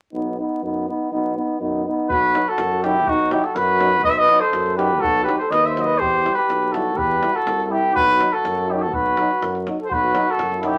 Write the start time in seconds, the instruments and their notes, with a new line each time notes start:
0.13 tuba B1, euphonium B3 D#4
0.38 euphonium B3 D#4
0.62 tuba F#2, euphonium B3 D#4
0.88 euphonium B3 D#4
1.11 tuba B1, euphonium B3 D#4
1.36 euphonium B3 D#4
1.60 tuba F#2, euphonium B3 D#4
1.85 euphonium B3 D#4
2.09 tuba B1, flugelhorn F#4, trumpet B4, davul low
2.23 davul high
2.33 euphonium F#3 D#4, davul high
2.48 flugelhorn F#4, trumpet A4, davul high
2.58 tuba F#2, davul high
2.72 davul high
2.83 euphonium F#3 D#4, flugelhorn E4, trumpet G4, davul high
3.07 tuba B1, flugelhorn D#4, trumpet F#4, davul low
3.19 davul high
3.31 euphonium F#3 D#4, flugelhorn E4, trumpet G4, davul high
3.44 flugelhorn F#4, trumpet A4, davul high
3.55 tuba F#2, flugelhorn F#4, trumpet B4, davul high
3.69 davul high
3.79 euphonium F#3 D#4, davul high
4.02 tuba B1, flugelhorn B4, trumpet D#5, davul low
4.10 flugelhorn C5, trumpet E5
4.17 flugelhorn B4, trumpet D#5, davul high
4.28 euphonium F#3 D#4, davul high
4.40 flugelhorn A4, trumpet C5, davul high
4.52 tuba F#2, davul high
4.66 davul high
4.76 euphonium F#3 D#4, flugelhorn G4, trumpet B4, davul high
5.00 tuba B1, flugelhorn F#4, trumpet A4, davul low
5.24 euphonium F#3, flugelhorn G4, trumpet B4
5.28 euphonium D#4, davul high
5.38 flugelhorn A4, trumpet C5, davul high
5.50 tuba D#2, flugelhorn B4, trumpet D#5, davul high
5.65 flugelhorn C5, trumpet E5, davul high
5.75 euphonium F#3 D#4, davul high
5.81 trumpet D#5
5.86 flugelhorn B4
5.98 tuba E2, flugelhorn G4, trumpet C5, davul low
6.14 davul high
6.23 euphonium G3 E4, davul high
6.34 flugelhorn G4, trumpet B4
6.38 davul high
6.49 tuba B1, davul high
6.62 davul high
6.72 euphonium G3 E4, flugelhorn F#4, trumpet A4, davul high
6.96 tuba E2, flugelhorn G4, trumpet B4, davul low
7.12 davul high
7.21 euphonium G3 E4, davul high
7.32 flugelhorn F#4, trumpet A4, davul high
7.46 tuba C2, davul high
7.60 flugelhorn F#4, davul high
7.65 euphonium G3, trumpet A4
7.70 flugelhorn E4, euphonium E4, trumpet G4
7.93 tuba B1, flugelhorn F#4, trumpet B4, davul low
8.09 davul high
8.18 euphonium F#3 D#4, davul high
8.31 flugelhorn F#4, trumpet A4, davul high
8.44 tuba F#2, davul high
8.58 davul high
8.67 euphonium F#3 D#4, flugelhorn D#4 E4, trumpet G4
8.73 flugelhorn E4, trumpet G4
8.77 flugelhorn F#4
8.82 trumpet A4
8.90 tuba B1, flugelhorn F#4, davul low
8.94 trumpet B4
9.07 davul high
9.17 euphonium F#3 D#4, davul high
9.31 davul high
9.41 tuba F#2, davul high
9.55 davul high
9.65 euphonium F#3 D#4, davul high
9.79 flugelhorn A4, davul high
9.85 trumpet C5
9.90 tuba B1, flugelhorn F#4, trumpet B4, davul low
10.04 davul high
10.14 euphonium F#3 D#4, davul high
10.23 flugelhorn F#4
10.31 trumpet A4
10.37 tuba F#2, davul high
10.52 flugelhorn F#4, davul high
10.59 euphonium D#4, flugelhorn E4, trumpet A4
10.63 euphonium F#3, trumpet G4, davul high